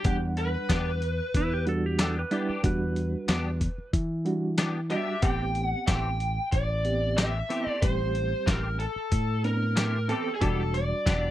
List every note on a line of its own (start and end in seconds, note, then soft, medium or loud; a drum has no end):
0.04 0.55 E2 loud
0.04 1.00 G3 medium
0.04 1.00 D4 medium
0.04 0.15 G4 medium
0.04 1.01 F#5 medium
0.04 kick loud
0.04 closed hi-hat medium
0.37 1.63 B4 medium
0.37 closed hi-hat medium
0.69 1.20 E2 medium
0.69 0.90 B3 medium
0.69 0.90 D4 medium
0.69 0.90 G4 medium
0.69 kick medium
0.69 snare loud
0.69 closed hi-hat medium
0.69 tambourine loud
1.02 closed hi-hat medium
1.34 2.23 E2 medium
1.34 1.52 E4 medium
1.34 kick medium
1.34 closed hi-hat medium
1.53 1.67 G4 medium
1.66 2.15 G3 medium
1.66 2.15 D4 medium
1.66 2.16 F#4 medium
1.66 1.84 A4 medium
1.66 closed hi-hat medium
1.86 2.00 G4 medium
1.99 2.19 B3 medium
1.99 2.20 D4 medium
1.99 2.20 G4 medium
1.99 2.17 A4 medium
1.99 snare loud
1.99 closed hi-hat medium
1.99 tambourine loud
2.19 2.64 B4 medium
2.31 2.56 G3 medium
2.31 2.49 B3 medium
2.31 2.56 D4 medium
2.31 2.49 D4 medium
2.31 2.56 E4 medium
2.31 2.47 G4 medium
2.31 closed hi-hat medium
2.49 2.68 D4 soft
2.49 2.67 G4 medium
2.49 muted fingered electric bass stroke soft
2.63 3.14 E2 medium
2.63 3.59 G3 medium
2.63 3.59 D4 medium
2.63 3.59 F#4 medium
2.63 3.91 B4 medium
2.63 kick loud
2.63 closed hi-hat medium
2.96 closed hi-hat medium
3.28 3.67 E2 medium
3.28 3.49 B3 medium
3.28 3.49 D4 medium
3.28 3.49 G4 medium
3.28 snare loud
3.28 closed hi-hat medium
3.28 tambourine loud
3.61 kick medium
3.61 closed hi-hat medium
3.78 muted fingered electric bass stroke soft
3.93 4.94 E3 medium
3.93 kick medium
3.93 closed hi-hat medium
4.25 4.74 G3 medium
4.25 4.74 D4 medium
4.25 4.75 F#4 medium
4.25 closed hi-hat soft
4.58 4.78 B3 medium
4.58 4.79 D4 medium
4.58 4.79 G4 medium
4.58 snare loud
4.58 closed hi-hat medium
4.58 tambourine loud
4.90 5.15 G3 medium
4.90 5.08 B3 soft
4.90 5.15 D4 medium
4.90 5.08 D4 soft
4.90 5.15 F#4 medium
4.90 5.06 G4 medium
4.90 5.24 E5 medium
4.90 closed hi-hat medium
5.07 5.23 D4 soft
5.07 5.23 G4 soft
5.22 5.73 A1 loud
5.22 5.43 E3 medium
5.22 5.43 A3 medium
5.22 6.18 B3 medium
5.22 6.18 C4 medium
5.22 5.44 C4 medium
5.22 6.19 G4 medium
5.22 5.44 G4 medium
5.22 5.65 G5 medium
5.22 kick loud
5.22 closed hi-hat medium
5.55 closed hi-hat medium
5.65 5.83 F#5 medium
5.87 6.38 A1 medium
5.87 6.08 E3 medium
5.87 6.08 A3 medium
5.87 6.08 C4 medium
5.87 6.09 G4 medium
5.87 6.48 G5 medium
5.87 kick medium
5.87 snare loud
5.87 closed hi-hat medium
5.87 tambourine loud
6.20 closed hi-hat medium
6.52 7.41 A1 medium
6.52 7.17 D5 medium
6.52 kick medium
6.52 closed hi-hat medium
6.85 7.34 B3 medium
6.85 7.34 C4 medium
6.85 7.34 G4 medium
6.85 closed hi-hat medium
7.17 7.37 E3 medium
7.17 7.38 A3 medium
7.17 7.38 C4 medium
7.17 7.38 G4 medium
7.17 7.68 E5 medium
7.17 snare loud
7.17 closed hi-hat medium
7.17 tambourine loud
7.49 7.67 E3 soft
7.49 7.67 A3 soft
7.49 7.74 B3 medium
7.49 7.74 C4 medium
7.49 7.66 C4 medium
7.49 7.75 E4 medium
7.49 7.65 G4 medium
7.49 closed hi-hat medium
7.66 7.86 A3 soft
7.66 7.86 C4 soft
7.66 7.85 G4 soft
7.66 7.82 D5 medium
7.66 muted fingered electric bass stroke soft
7.82 8.32 A1 medium
7.82 8.78 G3 medium
7.82 8.78 C4 medium
7.82 8.78 G4 medium
7.82 8.43 C5 medium
7.82 kick loud
7.82 closed hi-hat medium
8.15 closed hi-hat medium
8.46 8.85 A1 medium
8.46 8.67 E3 medium
8.46 8.67 A3 medium
8.46 8.67 C4 medium
8.46 8.68 G4 medium
8.46 8.77 A#4 medium
8.46 kick medium
8.46 snare loud
8.46 closed hi-hat medium
8.46 tambourine loud
8.79 9.40 A4 medium
8.79 closed hi-hat medium
8.96 muted fingered electric bass stroke soft
9.12 10.12 A2 medium
9.12 kick medium
9.12 closed hi-hat medium
9.44 9.93 B3 medium
9.44 9.93 C4 medium
9.44 9.93 D4 medium
9.44 10.09 A#4 medium
9.44 closed hi-hat soft
9.76 9.97 E3 medium
9.76 9.97 A3 medium
9.76 9.97 C4 medium
9.76 9.97 G4 medium
9.76 snare loud
9.76 closed hi-hat medium
9.76 tambourine loud
10.08 10.29 E3 soft
10.08 10.29 A3 soft
10.08 10.33 B3 medium
10.08 10.33 C4 medium
10.08 10.30 C4 medium
10.08 10.30 G4 medium
10.08 10.34 A4 medium
10.08 closed hi-hat medium
10.35 10.41 G#4 medium
10.41 10.92 E1 loud
10.41 10.61 E3 medium
10.41 11.31 G3 medium
10.41 10.62 B3 medium
10.41 11.31 D4 medium
10.41 10.62 D4 medium
10.41 11.31 F#4 medium
10.41 10.62 G4 medium
10.41 10.72 A4 medium
10.41 kick loud
10.41 closed hi-hat medium
10.74 11.31 D5 medium
10.74 closed hi-hat medium
11.06 11.31 E1 medium
11.06 11.26 E3 medium
11.06 11.27 B3 medium
11.06 11.27 D4 medium
11.06 11.27 G4 medium
11.06 kick medium
11.06 snare loud
11.06 closed hi-hat medium
11.06 tambourine loud